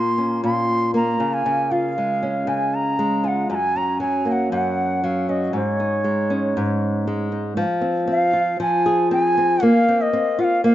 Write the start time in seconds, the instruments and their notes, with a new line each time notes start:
Already playing: nylon-string guitar A#2 A#3 F4, bansuri C6
0.18 nylon-string guitar C#4
0.44 nylon-string guitar A#2, bansuri C6
0.94 nylon-string guitar A#3, bansuri A#5
1.20 nylon-string guitar C#3
1.34 bansuri G#5
1.46 nylon-string guitar C#3
1.71 nylon-string guitar F4, bansuri F5
1.98 nylon-string guitar G#3
2.23 nylon-string guitar C#4
2.47 nylon-string guitar C#3, bansuri G#5
2.75 bansuri A#5
2.99 nylon-string guitar G#3
3.24 nylon-string guitar F4, bansuri G#5
3.28 bansuri F#5
3.50 nylon-string guitar F#2, bansuri A#5
3.55 bansuri G#5
3.76 nylon-string guitar C#4, bansuri A#5
4.00 nylon-string guitar F#3, bansuri G#5
4.25 nylon-string guitar A#3, bansuri G#5
4.32 bansuri F#5
4.52 nylon-string guitar F#2, bansuri F#5
5.04 nylon-string guitar F#3, bansuri F5
5.29 nylon-string guitar C#4, bansuri D#5
5.53 nylon-string guitar G#2, bansuri C#5
5.80 nylon-string guitar D#4
6.04 nylon-string guitar G#3
6.30 nylon-string guitar C#4
6.57 nylon-string guitar G#2
7.07 nylon-string guitar G#3
7.32 nylon-string guitar D#4
7.57 nylon-string guitar F3
7.81 nylon-string guitar C4
8.08 nylon-string guitar C4, bansuri F5
8.33 nylon-string guitar F4
8.60 nylon-string guitar F3, bansuri G#5
8.86 nylon-string guitar G#4
9.11 nylon-string guitar C4, bansuri G#5
9.38 nylon-string guitar C4
9.63 nylon-string guitar A#3, bansuri F5
9.89 nylon-string guitar C4
10.02 bansuri D#5
10.13 nylon-string guitar C4
10.39 nylon-string guitar F4, bansuri F#5
10.44 bansuri F5
10.64 nylon-string guitar A#3, bansuri F5